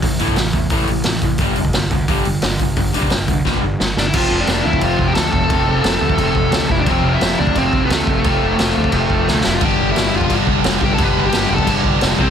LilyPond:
<<
  \new Staff \with { instrumentName = "Lead electric guitar" } { \time 4/4 \key f \lydian \tempo 4 = 175 r1 | r1 | r2. r8 <d' d''>16 <e' e''>16 | <f' f''>8. <d' d''>8. <e' e''>8 <f' f''>8. <g' g''>16 <a' a''>8 <a' a''>8~ |
<a' a''>2.~ <a' a''>8 <e' e''>16 <d' d''>16 | <c' c''>8. <e' e''>8. <d' d''>8 <c' c''>8. <b b'>16 <a a'>8 <a a'>8~ | <a a'>2.~ <a a'>8 <e' e''>16 <f' f''>16 | <g' g''>8. <e' e''>8. <f' f''>8 r4. <g' g''>16 <a' a''>16 |
<b' b''>8. <g' g''>8. <a' a''>8 r4. <c' c''>16 r16 | }
  \new Staff \with { instrumentName = "Distorted electric guitar" } { \clef bass \time 4/4 \key f \lydian <a, e>8 <a, e a>8 <a, e>8 <a, e>8 <a, e a>8 <a, e>8 <a, e>8 <a, e>8 | <g, d g>8 <g, d>8 <g, d>8 <g, d>8 <g, d g>8 <g, d>8 <g, d>8 <g, d>8 | <g, d>8 <g, d g>8 <g, d>8 <g, d>8 <g, d g>8 <g, d>8 <g, d>8 <g, d>8 | <f, c f a c'>2 <f, c f a c'>2 |
<f, c f a c'>2 <f, c f a c'>2 | <f, c f a c'>2 <f, c f a c'>2 | <f, c f a c'>2 <f, c f a c'>2 | <g, d g b d'>2 <g, d g b d'>2 |
<g, d g b d'>2 <g, d g b d'>4. <c g c' e'>8 | }
  \new Staff \with { instrumentName = "Distorted electric guitar" } { \clef bass \time 4/4 \key f \lydian r1 | r1 | r1 | r1 |
r1 | r1 | r1 | <g, d g>2 <g, d g>2 |
<g, d g>2 <g, d g>4. <c g c'>8 | }
  \new Staff \with { instrumentName = "Overdriven electric guitar" } { \clef bass \time 4/4 \key f \lydian <a, e>8 <a, e a>8 <a, e>8 <a, e>8 <a, e a>8 <a, e>8 <a, e>8 <a, e>8 | <g, d g>8 <g, d>8 <g, d>8 <g, d>8 <g, d g>8 <g, d>8 <g, d>8 <g, d>8 | <g, d>8 <g, d g>8 <g, d>8 <g, d>8 <g, d g>8 <g, d>8 <g, d>8 <g, d>8 | <f, c f>1 |
<f, c f>1 | <f, c f>1 | <f, c f>1 | <g, d g>1 |
<g, d g>2.~ <g, d g>8 <c g c'>8 | }
  \new Staff \with { instrumentName = "Picked electric bass" } { \clef bass \time 4/4 \key f \lydian a,,8 g,,8 a,,8 e,8 a,,8 a,,8 a,,8 a,,8 | g,,8 f,,8 g,,8 d,8 g,,8 g,,8 g,,8 g,,8 | g,,8 f,,8 g,,8 d,8 g,,8 g,,8 g,,8 g,,8 | f,,8 f,,8 f,,8 d,8 f,,8 f,,8 d,8 f,,8 |
f,,8 f,,8 f,,8 d,8 f,,8 f,,8 d,8 f,,8 | f,,8 f,,8 f,,8 d,8 f,,8 f,,8 d,8 f,,8 | f,,8 f,,8 f,,8 d,8 f,,8 f,,8 d,8 f,,8 | g,,8 g,,8 g,,8 f,,8 g,,8 g,,8 f,,8 g,,8 |
g,,8 g,,8 g,,8 f,,8 g,,8 g,,8 f,,8 c,8 | }
  \new DrumStaff \with { instrumentName = "Drums" } \drummode { \time 4/4 <hho bd>8 hho16 bd16 <hho sn>8 <hho bd>8 <hho bd>8 hho8 <hho sn>8 <hho bd>8 | <hho bd>8 hho16 bd16 <hho sn>8 <hho bd>8 <hho bd>8 hho8 <hho sn>8 <hho bd>8 | <hho bd>8 hho16 bd16 <hho sn>8 <hho bd>8 <bd sn>4 sn8 sn8 | <cymc bd>4 <cymc sn>8. bd16 <cymc bd>8 bd8 <cymc sn>8 bd8 |
<cymc bd>4 <cymc sn>8. bd16 <cymc bd>8 bd8 <cymc sn>8 bd8 | <cymc bd>4 <cymc sn>8. bd16 <cymc bd>8 bd8 <cymc sn>8 bd8 | <cymc bd>4 <cymc sn>8. bd16 <cymc bd>8 bd8 sn8 sn8 | <cymc bd>4 <cymc sn>8. bd16 <cymc bd>8 bd8 <cymc sn>8 bd8 |
<cymc bd>4 <cymc sn>8. bd16 <cymc bd>8 bd8 <cymc sn>8 bd8 | }
>>